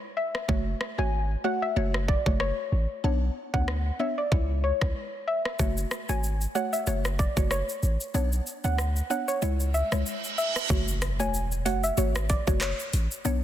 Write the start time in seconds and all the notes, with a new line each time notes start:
0.17 E5
0.35 cross-stick
0.48 F#1 A3 F#4 C#5, kick
0.81 cross-stick
0.98 G#1 A3 F#4 C#5 G#5
1.44 A3 F#4 C#5 F#5
1.62 E5
1.76 F#1 A3 F#4 C#5
1.94 cross-stick
2.08 D5, kick
2.26 F#1 A3 F#4 C#5, kick
2.40 C#5, cross-stick
2.72 A1
3.04 B1 B3 D4 C#5
3.54 D2 B3 D4 C#5 F#5, kick
3.68 cross-stick
3.99 B3 D4 C#5 E5
4.18 D5
4.32 C#2 G#3 E4 C#5, kick
4.64 C#5
4.81 C#2 G#3 E4 C#5, kick, cross-stick
5.27 E5
5.45 cross-stick
5.59 F#1 A3 F#4 C#5, kick, shaker
5.77 shaker
5.91 cross-stick, shaker
6.09 G#1 A3 F#4 C#5 G#5, shaker
6.24 shaker
6.41 shaker
6.55 A3 F#4 C#5 F#5, shaker
6.73 E5, shaker
6.87 F#1 A3 F#4 C#5, shaker
7.05 cross-stick, shaker
7.19 D5, kick, shaker
7.37 F#1 A3 F#4 C#5, kick, shaker
7.51 C#5, cross-stick, shaker
7.69 shaker
7.83 A1, shaker
8.01 shaker
8.14 B1 B3 D4 C#5, shaker
8.33 shaker
8.47 shaker
8.64 D2 B3 D4 C#5 F#5, shaker
8.78 cross-stick, shaker
8.96 shaker
9.10 B3 D4 C#5 F#5, shaker
9.28 C#5, shaker
9.42 C#2 G#3 E4 C#5, reverse cymbal, shaker
9.60 shaker
9.74 E5, shaker
9.92 C#2 G#3 E4 C#5, cross-stick, shaker
10.06 shaker
10.24 shaker
10.38 E5, shaker
10.56 cross-stick, shaker
10.70 F#1 A3 F#4 C#5, kick, impact, shaker
10.88 shaker
11.02 cross-stick, closed hi-hat, shaker
11.20 E1 A3 F#4 C#5 G#5, shaker
11.34 shaker
11.52 shaker
11.65 F#1 A3 F#4 C#5 F#5, closed hi-hat, shaker
11.84 E5, shaker
11.97 G#1 A3 F#4 C#5, shaker
12.15 cross-stick, shaker
12.30 D5, kick, closed hi-hat, shaker
12.47 F#1 A3 F#4 C#5, kick, shaker
12.61 C#5, cross-stick, clap, shaker
12.80 shaker
12.93 A1, closed hi-hat, shaker
13.11 shaker
13.25 B1 B3 D4 C#5, shaker